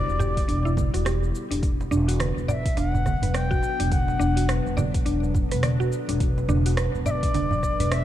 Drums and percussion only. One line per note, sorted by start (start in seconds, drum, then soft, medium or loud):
0.09 cabasa soft
0.20 djembe slap medium
0.20 djembe bass medium
0.20 cabasa medium
0.37 kick loud
0.37 open hi-hat soft
0.37 cabasa soft
0.49 open hi-hat soft
0.49 cabasa soft
0.66 djembe tone medium
0.66 cabasa soft
0.77 kick loud
0.77 djembe bass medium
0.77 low conga medium
0.77 cabasa medium
0.94 cross-stick soft
0.94 open hi-hat soft
0.94 cabasa soft
1.06 cross-stick medium
1.06 open hi-hat soft
1.06 cabasa soft
1.23 djembe tone soft
1.23 cabasa soft
1.35 cabasa medium
1.51 open hi-hat medium
1.51 djembe tone medium
1.51 cabasa soft
1.63 kick loud
1.63 open hi-hat soft
1.63 cabasa soft
1.81 djembe slap medium
1.81 cabasa soft
1.92 djembe tone medium
1.92 cabasa medium
2.09 open hi-hat soft
2.09 cabasa soft
2.20 cross-stick loud
2.20 open hi-hat soft
2.20 low conga medium
2.20 cabasa soft
2.38 cabasa soft
2.49 djembe slap medium
2.49 djembe bass medium
2.49 cabasa medium
2.66 kick loud
2.66 open hi-hat medium
2.66 cabasa soft
2.77 open hi-hat soft
2.77 djembe slap medium
2.77 cabasa soft
2.94 djembe bass medium
2.94 cabasa soft
3.06 kick medium
3.06 cross-stick soft
3.06 low conga medium
3.06 cabasa medium
3.22 open hi-hat soft
3.22 djembe bass medium
3.22 cabasa soft
3.34 cross-stick medium
3.34 open hi-hat soft
3.34 cabasa soft
3.51 kick loud
3.51 cabasa soft
3.63 djembe slap soft
3.63 cabasa medium
3.80 open hi-hat medium
3.80 djembe tone medium
3.80 cabasa soft
3.92 kick loud
3.92 open hi-hat soft
3.92 low conga medium
3.92 cabasa soft
4.08 djembe slap medium
4.08 cabasa soft
4.20 djembe tone medium
4.20 cabasa medium
4.37 open hi-hat soft
4.37 cabasa soft
4.49 cross-stick loud
4.49 open hi-hat soft
4.49 cabasa soft
4.67 cabasa soft
4.77 djembe slap medium
4.77 djembe bass medium
4.77 low conga medium
4.77 cabasa medium
4.94 kick loud
4.94 open hi-hat medium
4.94 cabasa soft
5.06 open hi-hat soft
5.06 cabasa soft
5.23 djembe tone medium
5.23 cabasa soft
5.35 kick medium
5.35 djembe bass medium
5.35 cabasa medium
5.51 cross-stick soft
5.51 open hi-hat medium
5.51 cabasa soft
5.63 cross-stick medium
5.63 open hi-hat soft
5.63 low conga medium
5.63 cabasa soft
5.81 djembe tone soft
5.81 cabasa soft
5.92 cabasa medium
6.09 open hi-hat soft
6.09 djembe tone medium
6.09 cabasa soft
6.20 kick loud
6.20 open hi-hat soft
6.20 cabasa soft
6.38 djembe slap soft
6.38 cabasa soft
6.49 djembe tone medium
6.49 low conga medium
6.49 cabasa medium
6.66 open hi-hat medium
6.66 cabasa soft
6.77 cross-stick loud
6.77 open hi-hat soft
6.77 cabasa soft
6.95 cabasa soft
7.06 djembe slap medium
7.06 djembe bass medium
7.06 cabasa medium
7.23 kick loud
7.23 open hi-hat medium
7.23 cabasa soft
7.34 open hi-hat soft
7.34 djembe slap medium
7.34 low conga medium
7.34 cabasa soft
7.51 djembe bass medium
7.51 cabasa soft
7.63 kick medium
7.63 cross-stick soft
7.63 cabasa medium
7.80 open hi-hat medium
7.80 djembe bass medium
7.80 cabasa soft
7.92 cross-stick loud
7.92 open hi-hat soft
7.92 cabasa soft